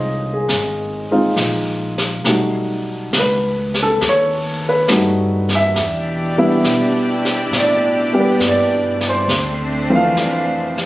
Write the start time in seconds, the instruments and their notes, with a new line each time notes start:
Already playing: upright bass C2, upright piano G#3 C4 D#4 F4 C5 C#5 D#5
0.33 upright piano G#4
0.49 upright bass G#1, brush sweep, snare
1.11 upright piano G#3 C4 D#4 F4
1.36 upright bass A#1, snare, hi-hat pedal
1.98 snare
2.24 upright bass B1, upright piano G3 A3 D#4 F#4, brush sweep, snare
3.13 upright bass C#2, snare, hi-hat pedal
3.19 upright piano B4
3.74 snare
3.83 upright piano A4
4.01 upright bass D#2, brush sweep, snare
4.09 upright piano C#5
4.69 upright piano B4
4.88 upright bass G2, upright piano G3 A3 D#4 F#4, snare, hi-hat pedal
5.49 snare
5.55 upright piano E5
5.75 upright bass E2, string section B2 D4 E4 G4 D5, brush sweep, snare
6.38 upright piano G3 B3 D4 E4
6.64 upright bass B2, snare, hi-hat pedal
7.25 snare
7.51 upright bass A2, brush sweep, snare
7.60 upright piano D5
8.13 upright piano G3 B3 D4 G4
8.20 upright piano B4
8.40 upright bass G2, snare, hi-hat pedal
8.48 upright piano D5
9.01 snare
9.09 upright piano C5
9.27 upright bass D2, string section A3 C4 D4 C5, brush sweep, snare
9.90 upright piano E3 F3 A3 C4
9.95 upright piano F5
10.15 upright bass F2, snare, hi-hat pedal
10.78 snare